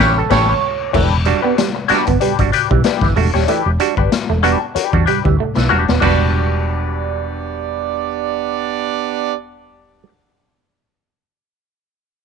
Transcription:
Already playing: clav A#4
0.00 fingered electric bass A1, horn section G3 C#4 E4 C#5, clean electric guitar C#4 G4 B4
0.18 clav A4
0.30 fingered electric bass A1, horn section G3 C#4 E4 C#5, clean electric guitar C#4 G4 B4, clav A4, kick, snare, crash
0.49 clav C#5
0.93 fingered electric bass E1, clav E3, clean electric guitar A3 D4 G4 B4, kick, crash
1.25 clav G3 D4 F#4, muted clean electric guitar stroke, closed hi-hat
1.42 clean electric guitar B3 D4 G4 B4, clav D4 F#4
1.57 clean electric guitar G3, muted clean electric guitar stroke, snare, closed hi-hat
1.75 muted clean electric guitar stroke
1.88 clav G3 D4 F#4, horn section B3 D4 G4 D5, clean electric guitar D4 G4 B4, muted fingered electric bass stroke, snare, closed hi-hat
2.07 fingered electric bass G1, clean electric guitar B3, muted clean electric guitar stroke, kick, closed hi-hat
2.20 clean electric guitar G3 D4 G4 B4, muted fingered electric bass stroke, closed hi-hat
2.38 fingered electric bass G1, clav G3 D4 F#4, muted clean electric guitar stroke, kick, closed hi-hat
2.52 clean electric guitar D4 G4 B4, closed hi-hat
2.70 fingered electric bass B1, clav E3, clean electric guitar G3, muted clean electric guitar stroke, kick
2.84 clean electric guitar D4 G4 B4, clav D4 F#4, muted clean electric guitar stroke, snare, closed hi-hat
3.01 fingered electric bass G1, clav E3, kick, snare
3.16 fingered electric bass E1, clav G3 D4 F#4, clean electric guitar A3, muted clean electric guitar stroke, open hi-hat
3.34 fingered electric bass D#1, clean electric guitar G3 D4 G4 C#5, snare
3.48 clav E3, clean electric guitar A3 D4 G4 B4, closed hi-hat
3.66 fingered electric bass E1, muted clean electric guitar stroke
3.80 clav G3 D4 F#4, clean electric guitar G3, muted clean electric guitar stroke, closed hi-hat
3.97 fingered electric bass G1, clav D4 F#4, clean electric guitar D4 G4 B4, kick
4.12 muted fingered electric bass stroke, muted clean electric guitar stroke, snare, closed hi-hat
4.29 fingered electric bass E1, clean electric guitar A3, muted clean electric guitar stroke
4.43 clav G3 D4 F#4, clean electric guitar B3 D4 G4 B4, closed hi-hat
4.61 muted clean electric guitar stroke
4.75 clean electric guitar D4 G4 B4, muted fingered electric bass stroke, muted clean electric guitar stroke, closed hi-hat
4.92 fingered electric bass E2, clav G3 D4 F#4, muted clean electric guitar stroke, kick
5.06 clean electric guitar G3 D4 G4 B4, closed hi-hat
5.24 fingered electric bass D2, clav E3, clean electric guitar G3, muted clean electric guitar stroke, kick
5.38 clean electric guitar A3, clav D4 F#4
5.55 fingered electric bass B1, clav E3, muted clean electric guitar stroke, snare
5.69 fingered electric bass E1, clav G3 D4 F#4, clean electric guitar D4 G4 B4, muted clean electric guitar stroke
5.87 fingered electric bass D#1, clean electric guitar B3, muted clean electric guitar stroke, snare
6.00 fingered electric bass E1, clav G3 D4 F#4, horn section B3 D4 G4 D5, clean electric guitar B3 D4 G4, kick, crash
6.05 clean electric guitar B4

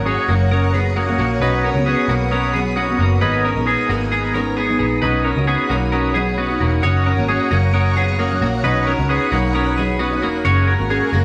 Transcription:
Already playing: picked electric bass G#1, steel-string acoustic guitar F#3 A#3 C#4 F#4, string machine C#5 F#5 A#5 D#6
0.05 transistor combo organ C#4 D#4 F#4 C#5, clean electric guitar C#4 G#4
0.29 picked electric bass F#1, steel-string acoustic guitar F#3 A#3 C#4 F#4, clean electric guitar A#3 F#4
0.51 transistor combo organ C#4 D#4 F#4 A#4, clean electric guitar C#4 A#4
0.74 steel-string acoustic guitar F#3 A#3 C#4 F#4, clean electric guitar B3 G#4
0.96 clean electric guitar A#3 F#4, transistor combo organ C#4 D#4 F#4 A#4
1.08 steel-string acoustic guitar F#3 A#3 C#4 F#4
1.19 picked electric bass A#1, clean electric guitar A#3 F#4
1.40 picked electric bass B1, steel-string acoustic guitar F#3 B3 C#4 F#4, transistor combo organ C#4 D#4 F#4 B4, clean electric guitar D#4 B4, string machine B5
1.64 clean electric guitar C#4 A#4
1.74 picked electric bass C#2, steel-string acoustic guitar F#3 B3 C#4 F#4
1.86 clean electric guitar B3 G#4, transistor combo organ C#4 D#4 F#4 B4
2.08 picked electric bass B1, steel-string acoustic guitar F#3 B3 C#4 F#4, clean electric guitar A#3 F#4
2.31 transistor combo organ C#4 D#4 F#4 B4, clean electric guitar C#4 A#4
2.54 steel-string acoustic guitar F#3 B3 C#4 F#4, clean electric guitar B3 G#4
2.76 clean electric guitar B3 F#4, transistor combo organ C#4 D#4 F#4 A#4
2.88 steel-string acoustic guitar F#3 B3 C#4 F#4
2.99 picked electric bass F#1, clean electric guitar A#3 F#4
3.21 picked electric bass G#1, steel-string acoustic guitar G#3 B3 D#4 A#4, string machine B3 G#5 A#5, transistor combo organ B3 D#4 G#4 A#4, clean electric guitar D#4 B4
3.44 clean electric guitar C#4 A#4
3.56 picked electric bass A#1, steel-string acoustic guitar G#3 B3 D#4 A#4
3.66 transistor combo organ B3 D#4 G#4 A#4, clean electric guitar B3 G#4
3.89 picked electric bass G#1, steel-string acoustic guitar G#3 B3 D#4 A#4, clean electric guitar A#3 F#4
4.11 transistor combo organ B3 D#4 G#4 A#4, clean electric guitar B3 G#4
4.34 steel-string acoustic guitar G#3 B3 D#4 A#4, clean electric guitar C#4 A#4
4.57 transistor combo organ B3 D#4 G#4 C#5, clean electric guitar B3 G#4
4.69 steel-string acoustic guitar G#3 B3 D#4 A#4
4.79 picked electric bass A#1, clean electric guitar B3 G#4
5.02 picked electric bass B1, steel-string acoustic guitar F#3 C#4 D#4 F#4, transistor combo organ C#4 D#4 F#4 B4, clean electric guitar D#4 B4, string machine C#5 F#5 B5
5.24 clean electric guitar C#4 A#4
5.36 picked electric bass C#2, steel-string acoustic guitar C#4 D#4 F#4
5.47 clean electric guitar B3 G#4, transistor combo organ C#4 D#4 F#4 B4
5.70 picked electric bass B1, steel-string acoustic guitar F#3 C#4 D#4 F#4, clean electric guitar A#3 F#4
5.92 clean electric guitar C#4 A#4, transistor combo organ C#4 D#4 F#4 B4
6.14 steel-string acoustic guitar F#3 C#4 D#4 F#4, clean electric guitar B3 G#4
6.38 clean electric guitar B3 F#4, transistor combo organ C#4 D#4 F#4 B4
6.50 steel-string acoustic guitar C#4 D#4 F#4
6.61 picked electric bass E1, clean electric guitar A#3 F#4
6.83 picked electric bass F#1, steel-string acoustic guitar F#3 A#3 C#4 F#4, transistor combo organ C#4 D#4 F#4 A#4, clean electric guitar F#4 C#5, string machine A#5
7.06 clean electric guitar C#4 A#4
7.16 picked electric bass G#1, steel-string acoustic guitar F#3 A#3 C#4 F#4
7.28 transistor combo organ C#4 D#4 F#4 G#4, clean electric guitar C#4 G#4
7.50 picked electric bass F#1, steel-string acoustic guitar F#3 A#3 C#4 F#4, clean electric guitar A#3 F#4
7.74 transistor combo organ C#4 D#4 F#4 C#5, clean electric guitar C#4 A#4
7.95 steel-string acoustic guitar F#3 A#3 C#4 F#4, clean electric guitar B3 G#4
8.18 clean electric guitar A#3 F#4, transistor combo organ C#4 D#4 F#4 A#4
8.29 steel-string acoustic guitar F#3 A#3 C#4 F#4
8.41 picked electric bass A#1, clean electric guitar A#3 F#4
8.64 picked electric bass B1, steel-string acoustic guitar F#3 C#4 D#4 F#4, transistor combo organ C#4 D#4 F#4 B4, clean electric guitar D#4 B4, string machine B5 D#6
8.87 clean electric guitar C#4 A#4
8.98 picked electric bass C#2, steel-string acoustic guitar C#4 D#4 F#4
9.09 clean electric guitar B3 G#4, transistor combo organ C#4 D#4 F#4 B4
9.32 picked electric bass B1, steel-string acoustic guitar F#3 C#4 D#4 F#4, clean electric guitar A#3 F#4
9.54 transistor combo organ C#4 D#4 F#4 B4, clean electric guitar C#4 A#4
9.77 steel-string acoustic guitar F#3 C#4 D#4 F#4, clean electric guitar B3 G#4
9.99 clean electric guitar B3 F#4, transistor combo organ C#4 D#4 F#4 B4
10.11 steel-string acoustic guitar C#4 D#4 F#4
10.22 picked electric bass E1, clean electric guitar A#3 F#4
10.44 picked electric bass F#1, steel-string acoustic guitar G#3 A#3 C#4 F#4, transistor combo organ C#4 F#4 G#4 A#4, clean electric guitar F#4 C#5, string machine A#4 G#5 C#6
10.67 clean electric guitar C#4 A#4
10.79 picked electric bass G#1, steel-string acoustic guitar G#3 A#3 C#4 F#4
10.90 transistor combo organ C#4 F#4 G#4 A#4, clean electric guitar C#4 G#4
11.13 picked electric bass F#1, steel-string acoustic guitar G#3 A#3 C#4 F#4, clean electric guitar A#3 F#4

